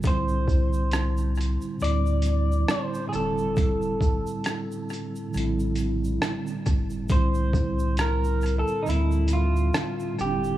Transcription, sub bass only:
X:1
M:4/4
L:1/16
Q:"Swing 16ths" 1/4=68
K:Dm
V:1 name="Sub bass" clef=bass
C,,6- C,, z D,,4 z2 F,,,2 | F,,,2 G,,, z4 z B,,,4 z2 G,,,2 | C,,6- C,, z D,,4 z2 F,,,2 |]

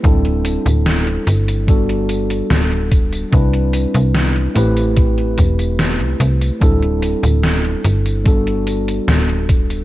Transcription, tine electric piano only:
X:1
M:4/4
L:1/8
Q:1/4=73
K:G
V:1 name="Tine electric piano"
[G,CDEA]4 [G,B,DFA]4 | [G,CDEB]3 [A,CEGB]4- [A,CEGB] | [G,CDEA]4 [G,B,DFA]4 |]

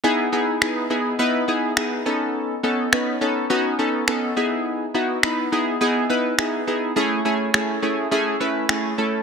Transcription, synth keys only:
X:1
M:4/4
L:1/8
Q:1/4=104
K:E
V:1 name="Synth keys"
[B,DEG] [B,DEG] [B,DEG] [B,DEG] [B,DEB] [B,DEG] [B,DEG] [B,CDA]- | [B,CDA] [B,CDA] [B,CDB] [B,CDA] [B,CDF] [B,CDA] [B,CDA] [B,DEG]- | [B,DEG] [B,DEF] [B,DEB] [B,DEG] [B,DEG] [B,DEB] [B,DEG] [B,DEG] | [A,CEG] [A,CEG] [A,CEG] [A,CEG] [A,CEG] [A,CEB] [A,CEG] [A,CEA] |]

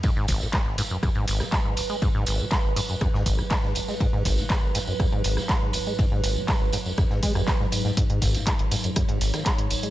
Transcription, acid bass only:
X:1
M:4/4
L:1/16
Q:1/4=121
K:G#m
V:1 name="Acid bass" clef=bass
G,, G,, G,,, B,, G, G,,, G,, F,, F,, G,, G,,, D, G, G,, G,,, G, | G,, G,, G,,, B,, G, G,,, G,, F,, F,, G,, G,,, D, G, G,, G,,, G, | G,, G,, G,,, B,, G, G,,, G,, F,, F,, G,, G,,, D, G, G,, G,,, G, | G,, G,, G,,, B,, G, G,,, G,, F,, F,, G,, G, F,, G, G,, G,, G,, |
G,, G,, G,,, B,, G, G,,, G,, F,, F,, G,, G,,, D, G, G,, G,,, G, |]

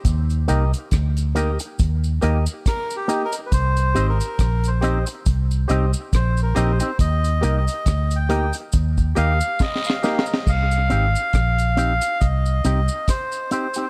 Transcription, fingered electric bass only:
X:1
M:4/4
L:1/16
Q:"Swing 16ths" 1/4=69
K:Cm
V:1 name="Fingered electric bass" clef=bass
E,,2 C,, z D,,3 z E,,2 E,, z4 z | C,,2 A,,, z B,,,3 z C,,2 C,, z B,,,2 B,,, z | E,,2 C,, z D,,3 z E,,2 E,, z4 z | C,,2 A,,, z B,,,3 z C,,2 C,, z4 z |]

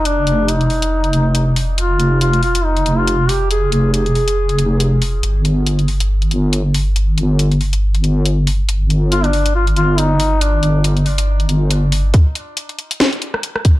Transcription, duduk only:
X:1
M:4/4
L:1/16
Q:"Swing 16ths" 1/4=139
K:Gphr
V:1 name="Duduk"
D4 E8- E2 z2 | F4 F2 F2 E3 F3 G2 | A2 A2 A8- A2 z2 | z16 |
z16 | z4 F D3 F2 F2 E4 | D4 z12 | z16 |]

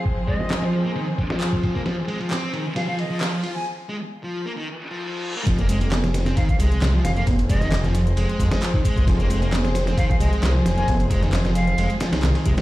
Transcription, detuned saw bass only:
X:1
M:4/4
L:1/16
Q:1/4=133
K:Fm
V:1 name="Detuned saw bass" clef=bass
z16 | z16 | z16 | F,,,8 z2 C,, C,, C,,2 F,,,2 |
F,,,8 F,,, z F,, z4 C,, | F,,,8 z2 C,, C,, C,,2 F,,,2 | F,,,8 F,,, z2 C,, C,, z C,, z |]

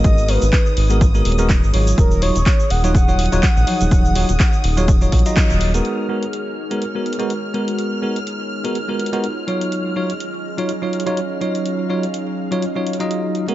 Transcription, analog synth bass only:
X:1
M:4/4
L:1/16
Q:"Swing 16ths" 1/4=124
K:G#dor
V:1 name="Analog synth bass" clef=bass
G,,,3 G,,, z2 G,,,4 D,,,3 G,,, G,,,2 | D,,,3 D,,, z2 D,,,4- D,,, D,,, z A,,, z D,,, | D,,,3 D,,, z2 D,,,4 A,,, z2 D,,,3 | z16 |
z16 | z16 | z16 |]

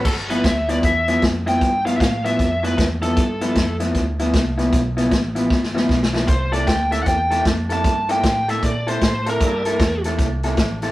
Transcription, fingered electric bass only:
X:1
M:4/4
L:1/8
Q:"Swing" 1/4=154
K:Gmix
V:1 name="Fingered electric bass" clef=bass
G,,,2 D,,2 E,,2 F,,2 | G,,2 A,,2 F,,2 E,,2 | G,,2 F,,2 D,,2 C,,2 | B,,,2 A,,,2 G,,,2 B,,,2 |
C,,2 D,,2 E,,2 F,,2 | G,,2 A,,2 _B,,2 A,,2 | G,,2 E,,2 C,,2 A,,,2 |]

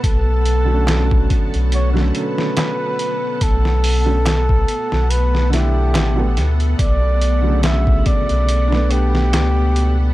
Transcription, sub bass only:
X:1
M:4/4
L:1/16
Q:"Swing 16ths" 1/4=71
K:Bm
V:1 name="Sub bass" clef=bass
B,,,6 z B,,,3 z6 | B,,,6 z B,,,4- B,,, A,,,2 D,,2 | B,,,6 z B,,,4- B,,, C,,4 |]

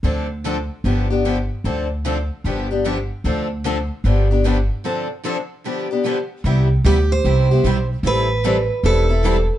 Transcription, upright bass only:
X:1
M:4/4
L:1/8
Q:"Swing" 1/4=150
K:C
V:1 name="Upright bass" clef=bass
D,,4 G,,,4 | D,,4 G,,,4 | D,,4 G,,,4 | z8 |
C,,2 D,,2 C,,2 B,,,2 | A,,,4 E,,,4 |]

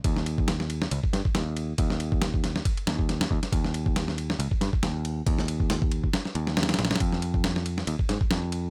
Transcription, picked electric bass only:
X:1
M:4/4
L:1/8
Q:"Swing 16ths" 1/4=138
K:Ebmix
V:1 name="Picked electric bass" clef=bass
E,,4 D,, G,, E,,2 | E,,4 z E,,2 E,, | E,,4 D,, G,, E,,2 | E,,4 z E,,2 B,,, |
F,,4 E,, A,, F,,2 |]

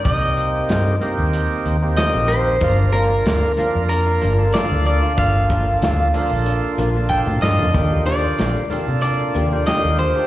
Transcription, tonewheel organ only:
X:1
M:4/4
L:1/16
Q:"Swing 16ths" 1/4=94
K:Gm
V:1 name="Tonewheel organ"
[B,CEG]6 [B,CEG]4- [B,CEG] [B,CEG]4- [B,CEG] | [B,DFB]6 [B,DFB]4- [B,DFB] [B,DFA]4- [B,DFA] | [B,DFA]6 [B,DFA]4- [B,DFA] [B,DFA]4- [B,DFA] | [D,B,FG]6 [B,DFA]4- [B,DFA] [D,B,FG]4- [D,B,FG] |]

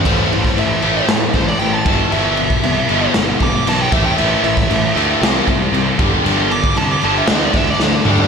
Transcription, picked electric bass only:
X:1
M:4/4
L:1/8
Q:1/4=116
K:Am
V:1 name="Picked electric bass" clef=bass
A,,, A,,, A,,, A,,, A,, A,,, A,,, G,,, | G,,,2 C,, G,,, G,,, G,,, B,,, A,,, | A,,, A,,, A,,, D,, C,, C,, C,, G,,, | G,,,2 C,, G,,, D,, D,, D,, D,, |]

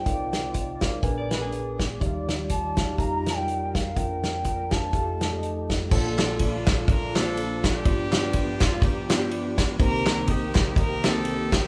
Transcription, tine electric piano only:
X:1
M:4/4
L:1/16
Q:"Swing" 1/4=123
K:Bb
V:1 name="Tine electric piano"
[EBdf]4 z2 [EBdf]2 [DB_c_a]2 z [_D=DBca]3 z2 | [EGd=ef]4 z2 [_EGdf]2 [EGBf]2 z [EGBd]3 z2 | [_D=DFBf]4 z2 [DFBf]2 [EGAf]2 z [EGAde]3 z2 | [B,DFA_d=d]4- [B,DFA_d=d] z4 z [B,CDFAc]4 z2 |
[B,=B,DFGd]4- [_B,=B,DFGd] z4 z [B,DFGd]4 z2 | [B,CEGc]4- [B,CEGc] z4 z [B,CEGc]4 z2 |]
V:2 name="Tine electric piano" clef=bass
[C,,C,]8 [B,,,B,,]8 | [E,,E,]8 F,,8 | F,,8 F,,8 | [B,,,B,,]16 |
G,,16 | [C,,C,]16 |]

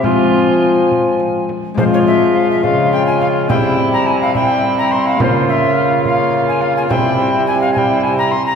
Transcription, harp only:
X:1
M:6/8
L:1/8
Q:3/8=70
K:Fm
V:1 name="Harp"
[A,CF]6 | [A,CF]6 | [C=E]6 | [B,F]6 |
[=Ec]6 |]
V:2 name="Harp" clef=bass
F,6 | F,3 D,3 | C,6 | D,6 |
C,6 |]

